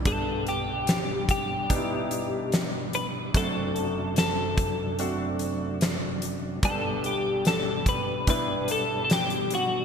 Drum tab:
HH |x-x-x-x-x-x-x-x-|x-x-x-x-x-x-x-x-|x-x-x-x-x-x-xxx-|
SD |----o-------o---|----o-------o---|----o-------o---|
BD |o-----o-o-------|o-----o---------|o-----o-o-------|